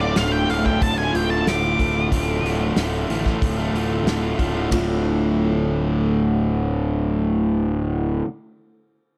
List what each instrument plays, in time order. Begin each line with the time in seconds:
Already playing: picked electric bass D1, distorted electric guitar D2 A2 D4, steel-string acoustic guitar D3 D4
0.00 distorted electric guitar D3 A3 F4, lead electric guitar D5
0.16 picked electric bass D1, distorted electric guitar D2 A2 D3 A3 F4, lead electric guitar F5, snare, open hi-hat
0.32 lead electric guitar G5
0.48 picked electric bass D1, distorted electric guitar A2 D3 A3 F4, lead electric guitar F5, open hi-hat
0.65 distorted electric guitar D3 A3 F4, lead electric guitar G5, kick
0.81 picked electric bass D1, steel-string acoustic guitar D3, lead electric guitar A5, kick, open hi-hat
0.97 distorted electric guitar D3 A3 F4, lead electric guitar G#5
1.13 picked electric bass D1, distorted electric guitar A2 D3 A3 F4, lead electric guitar G5, open hi-hat
1.30 lead electric guitar A5
1.45 picked electric bass D1, distorted electric guitar D2 A2 D3 A3 F4, lead electric guitar D6, snare, open hi-hat
1.62 distorted electric guitar D3 A3 F4
1.79 picked electric bass D1, distorted electric guitar A2 D3 A3 F4, kick, open hi-hat
1.95 distorted electric guitar D3 A3 F4
2.12 picked electric bass D1, distorted electric guitar D2 A2 D3 A3 F4, kick, open hi-hat
2.42 picked electric bass D1, distorted electric guitar A2 D3 A3 F4, open hi-hat
2.59 distorted electric guitar D3 A3 F4
2.76 picked electric bass D1, distorted electric guitar D2 A2 D3 A3 F4, snare, open hi-hat
3.08 picked electric bass A1, distorted electric guitar A2 D3 A3 F4, open hi-hat
3.26 distorted electric guitar D3 A3 F4, kick, snare
3.41 picked electric bass D1, steel-string acoustic guitar D3, kick, open hi-hat
3.56 distorted electric guitar D3 A3 F4
3.73 picked electric bass D1, distorted electric guitar A2 D3 A3 F4, open hi-hat
4.04 picked electric bass D1, distorted electric guitar D2 A2 D3 A3 F4, snare, open hi-hat
4.22 distorted electric guitar D3 A3 F4
4.38 picked electric bass D1, distorted electric guitar A2 D3 A3 F4, kick, open hi-hat
4.54 distorted electric guitar D3 A3 F4
4.71 picked electric bass D1, distorted electric guitar D2 A2, steel-string acoustic guitar D3 A3 F4, kick, ride
4.75 distorted electric guitar D3